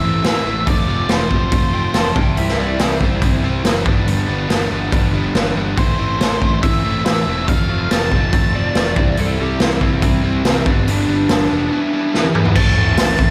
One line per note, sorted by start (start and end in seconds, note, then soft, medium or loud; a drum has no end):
0.00 0.22 A1 medium
0.00 0.22 A2 medium
0.00 0.23 E3 medium
0.00 0.23 A3 medium
0.00 0.24 C4 medium
0.00 0.22 E5 loud
0.04 0.24 E4 medium
0.23 0.43 A1 medium
0.23 0.44 A2 medium
0.23 0.44 E3 medium
0.23 0.44 A3 medium
0.23 0.45 C4 medium
0.23 0.45 E4 medium
0.23 0.68 E5 medium
0.23 snare loud
0.23 open hi-hat soft
0.45 0.64 A1 medium
0.45 0.65 A2 medium
0.45 0.65 E3 medium
0.45 0.66 A3 medium
0.45 0.67 C4 medium
0.45 0.66 E4 medium
0.66 0.85 F1 medium
0.66 0.86 F3 medium
0.66 0.86 A3 medium
0.66 0.87 C4 medium
0.66 0.87 F4 medium
0.66 1.11 D5 medium
0.66 kick medium
0.66 open hi-hat soft
0.87 1.07 F1 medium
0.87 1.07 F3 medium
0.87 1.07 A3 medium
0.87 1.09 C4 medium
0.87 1.08 F4 medium
1.08 1.28 F1 medium
1.08 1.29 F3 medium
1.08 1.30 A3 medium
1.08 1.29 C4 medium
1.08 1.30 F4 medium
1.08 2.12 C5 medium
1.08 snare loud
1.08 open hi-hat soft
1.30 1.49 F1 medium
1.30 1.50 F3 medium
1.30 1.50 A3 medium
1.30 1.51 C4 medium
1.30 1.52 F4 medium
1.30 kick medium
1.51 1.88 F1 medium
1.51 1.71 F3 medium
1.51 1.72 A3 medium
1.51 1.72 C4 medium
1.51 1.73 F4 medium
1.51 kick loud
1.51 open hi-hat soft
1.72 1.93 F3 medium
1.72 1.94 A3 medium
1.72 1.94 C4 medium
1.72 1.95 F4 medium
1.72 1.94 G5 medium
1.94 2.12 F1 medium
1.94 2.14 F3 medium
1.94 2.15 A3 medium
1.94 2.15 C4 medium
1.94 2.15 F4 medium
1.94 2.16 A5 medium
1.94 snare loud
1.94 open hi-hat soft
2.16 2.34 C2 medium
2.16 2.36 C3 medium
2.16 2.38 G3 medium
2.16 2.38 C4 medium
2.16 2.38 E4 medium
2.16 2.37 G5 medium
2.16 kick loud
2.37 2.55 C2 medium
2.37 2.58 C3 medium
2.37 2.59 G3 medium
2.37 2.58 C4 medium
2.37 2.59 E4 medium
2.37 2.58 E5 medium
2.37 open hi-hat soft
2.48 snare soft
2.58 2.76 C2 medium
2.58 2.80 C3 medium
2.58 2.81 G3 medium
2.58 2.80 C4 medium
2.58 2.81 E4 loud
2.58 2.79 D5 medium
2.79 2.98 C2 medium
2.79 3.00 C3 medium
2.79 3.01 G3 medium
2.79 3.00 C4 medium
2.79 3.01 E4 medium
2.79 3.83 C5 medium
2.79 snare loud
2.79 open hi-hat soft
3.00 3.19 C2 medium
3.00 3.21 C3 medium
3.00 3.21 G3 medium
3.00 3.22 C4 medium
3.00 3.22 E4 medium
3.00 kick medium
3.22 3.40 C2 medium
3.22 3.42 C3 medium
3.22 3.42 G3 loud
3.22 3.42 C4 medium
3.22 3.43 E4 loud
3.22 kick loud
3.22 open hi-hat soft
3.43 3.61 C2 medium
3.43 3.62 C3 medium
3.43 3.63 G3 medium
3.43 3.64 C4 medium
3.43 3.64 E4 medium
3.64 3.82 F#1 medium
3.64 3.84 C3 medium
3.64 3.84 G3 medium
3.64 3.85 C4 medium
3.64 3.85 E4 medium
3.64 snare loud
3.64 open hi-hat medium
3.85 4.04 G1 medium
3.85 4.05 G2 medium
3.85 4.06 D3 medium
3.85 4.06 G3 medium
3.85 4.07 B3 medium
3.85 4.07 D4 loud
3.85 kick loud
4.06 4.25 G1 medium
4.06 4.26 G2 medium
4.06 4.26 D3 medium
4.06 4.27 G3 medium
4.06 4.27 B3 medium
4.06 4.28 D4 medium
4.06 open hi-hat soft
4.27 4.46 G1 medium
4.27 4.47 G2 medium
4.27 4.48 D3 medium
4.27 4.48 G3 medium
4.27 4.48 B3 medium
4.27 4.49 D4 medium
4.48 4.67 G1 medium
4.48 4.69 G2 medium
4.48 4.69 D3 medium
4.48 4.69 G3 medium
4.48 4.70 B3 medium
4.48 4.70 D4 medium
4.48 snare loud
4.48 open hi-hat medium
4.70 4.89 G1 medium
4.70 4.90 G2 medium
4.70 4.90 D3 medium
4.70 4.90 G3 medium
4.70 4.91 B3 medium
4.70 4.91 D4 medium
4.91 5.29 G1 medium
4.91 5.12 G2 medium
4.91 5.12 D3 medium
4.91 5.13 G3 loud
4.91 5.13 B3 medium
4.91 5.14 D4 loud
4.91 kick loud
4.91 open hi-hat soft
5.13 5.32 G2 medium
5.13 5.33 D3 medium
5.13 5.34 G3 medium
5.13 5.33 B3 medium
5.13 5.34 D4 medium
5.33 5.53 G1 medium
5.33 5.55 G2 medium
5.33 5.55 D3 medium
5.33 5.55 G3 medium
5.33 5.56 B3 medium
5.33 5.56 D4 medium
5.33 snare loud
5.33 open hi-hat soft
5.56 5.74 G1 medium
5.56 5.76 G2 medium
5.56 5.76 D3 medium
5.56 5.76 G3 medium
5.56 5.77 B3 medium
5.56 5.76 D4 medium
5.76 5.95 A1 medium
5.76 5.97 A2 medium
5.76 5.97 E3 medium
5.76 5.98 A3 medium
5.76 5.98 C4 medium
5.76 5.98 E4 loud
5.76 6.59 C5 medium
5.76 kick medium
5.76 open hi-hat soft
5.98 6.17 A1 medium
5.98 6.18 A2 medium
5.98 6.19 E3 medium
5.98 6.20 A3 medium
5.98 6.20 C4 medium
5.98 6.20 E4 medium
6.19 6.38 A1 medium
6.19 6.39 A2 medium
6.19 6.40 E3 medium
6.19 6.41 A3 medium
6.19 6.41 C4 medium
6.19 6.41 E4 medium
6.19 snare loud
6.19 open hi-hat soft
6.40 6.59 A1 medium
6.40 6.61 A2 medium
6.40 6.61 E3 medium
6.40 6.62 A3 medium
6.40 6.63 C4 medium
6.40 6.62 E4 medium
6.40 kick medium
6.62 6.81 A1 medium
6.62 6.82 A2 medium
6.62 6.83 E3 medium
6.62 6.83 A3 medium
6.62 6.84 C4 medium
6.62 6.84 E4 loud
6.62 7.02 E5 loud
6.62 kick loud
6.62 open hi-hat soft
6.83 7.03 A1 medium
6.83 7.04 A2 medium
6.83 7.04 E3 medium
6.83 7.05 A3 medium
6.83 7.06 C4 medium
6.83 7.05 E4 loud
7.05 7.24 A1 medium
7.05 7.26 A2 medium
7.05 7.26 E3 medium
7.05 7.27 A3 medium
7.05 7.28 C4 medium
7.05 7.27 E4 medium
7.05 7.48 E5 medium
7.05 snare loud
7.05 open hi-hat soft
7.27 7.45 E1 medium
7.27 7.46 A2 medium
7.27 7.47 E3 medium
7.27 7.47 A3 medium
7.27 7.49 C4 medium
7.27 7.47 E4 medium
7.48 7.66 F1 medium
7.48 7.68 F3 medium
7.48 7.68 A3 medium
7.48 7.69 C4 loud
7.48 7.68 F4 loud
7.48 7.92 F5 medium
7.48 kick loud
7.48 open hi-hat soft
7.69 7.87 F1 medium
7.69 7.90 F3 medium
7.69 7.90 A3 medium
7.69 7.92 C4 medium
7.69 7.91 F4 medium
7.91 8.09 F1 medium
7.91 8.11 F3 medium
7.91 8.12 A3 medium
7.91 8.12 C4 medium
7.91 8.12 F4 medium
7.91 8.93 A5 medium
7.91 snare loud
7.91 open hi-hat medium
8.12 8.30 F1 medium
8.12 8.32 F3 medium
8.12 8.32 A3 medium
8.12 8.33 C4 medium
8.12 8.33 F4 medium
8.12 kick medium
8.33 8.69 F1 loud
8.33 8.53 F3 medium
8.33 8.54 A3 medium
8.33 8.54 C4 medium
8.33 8.55 F4 loud
8.33 kick loud
8.33 open hi-hat soft
8.55 8.74 F3 medium
8.55 8.75 A3 medium
8.55 8.76 C4 medium
8.55 8.76 F4 loud
8.55 9.16 D5 medium
8.75 8.93 F1 medium
8.75 8.95 F3 medium
8.75 8.95 A3 medium
8.75 8.96 C4 medium
8.75 8.96 F4 medium
8.75 snare loud
8.75 open hi-hat medium
8.96 9.14 C2 medium
8.96 9.16 C3 medium
8.96 9.17 G3 medium
8.96 9.17 C4 medium
8.96 9.18 E4 loud
8.96 kick loud
9.17 9.36 C2 medium
9.17 9.38 C3 medium
9.17 9.40 G3 medium
9.17 9.39 C4 medium
9.17 9.39 E4 loud
9.17 9.39 A4 medium
9.17 open hi-hat soft
9.39 9.57 C2 medium
9.39 9.59 C3 medium
9.39 9.61 G3 medium
9.39 9.61 C4 medium
9.39 9.61 E4 medium
9.39 9.60 G4 medium
9.60 9.78 C2 medium
9.60 9.80 C3 medium
9.60 9.82 G3 medium
9.60 9.81 C4 medium
9.60 9.81 E4 medium
9.60 9.82 E4 medium
9.60 snare loud
9.60 open hi-hat soft
9.81 9.99 C2 medium
9.81 10.01 C3 medium
9.81 10.02 G3 medium
9.81 10.02 C4 medium
9.81 10.44 C4 medium
9.81 10.03 E4 medium
9.81 kick medium
10.02 10.20 C2 medium
10.02 10.22 C3 loud
10.02 10.23 G3 medium
10.02 10.23 C4 loud
10.02 10.24 E4 loud
10.02 kick loud
10.02 open hi-hat soft
10.23 10.41 C2 medium
10.23 10.43 C3 medium
10.23 10.43 G3 medium
10.23 10.44 C4 medium
10.23 10.44 E4 loud
10.45 10.63 C2 medium
10.45 10.65 C3 medium
10.45 10.65 G3 medium
10.45 10.65 C4 medium
10.45 10.87 C4 medium
10.45 10.65 E4 medium
10.45 snare loud
10.45 open hi-hat soft
10.66 10.84 G1 medium
10.66 10.86 G2 medium
10.66 10.86 D3 medium
10.66 10.87 G3 medium
10.66 10.87 B3 medium
10.66 10.87 D4 loud
10.66 kick medium
10.87 11.05 G1 medium
10.87 11.07 G2 medium
10.87 11.07 D3 medium
10.87 11.07 G3 medium
10.87 11.08 B3 medium
10.87 11.08 D4 medium
10.87 12.12 D4 medium
10.87 open hi-hat soft
11.08 11.26 G1 medium
11.08 11.28 G2 medium
11.08 11.29 D3 medium
11.08 11.29 G3 medium
11.08 11.30 B3 loud
11.08 11.30 D4 medium
11.29 11.48 G1 medium
11.29 11.49 G2 medium
11.29 11.49 D3 medium
11.29 11.50 G3 medium
11.29 11.50 B3 medium
11.29 11.51 D4 medium
11.29 snare loud
11.29 open hi-hat soft
11.50 11.69 F1 medium
11.50 11.70 G2 medium
11.50 11.70 D3 medium
11.50 11.71 G3 medium
11.50 11.71 B3 medium
11.50 11.71 D4 medium
11.71 11.91 E3 medium
11.71 11.92 G3 medium
11.71 11.92 B3 loud
11.71 11.93 E4 medium
11.93 12.12 E3 medium
11.93 12.13 G3 medium
11.93 12.13 B3 medium
11.93 12.13 E4 medium
12.14 12.33 E3 medium
12.14 12.34 G3 medium
12.14 12.34 B3 medium
12.14 12.34 E4 medium
12.14 snare medium
12.24 high tom medium
12.34 12.54 E3 medium
12.34 12.55 G3 medium
12.34 12.55 B3 medium
12.34 12.55 E4 medium
12.34 mid tom medium
12.45 floor tom medium
12.55 12.76 A1 medium
12.55 13.31 A2 medium
12.55 13.31 E3 medium
12.55 13.31 A3 loud
12.55 13.31 C4 medium
12.55 13.31 E4 loud
12.55 13.31 A5 loud
12.55 kick loud
12.55 crash loud
12.55 cowbell loud
12.77 12.98 A1 medium
12.97 13.18 A1 medium
12.97 snare loud
12.97 open hi-hat medium
12.97 cowbell medium
13.19 13.31 A1 medium
13.19 kick medium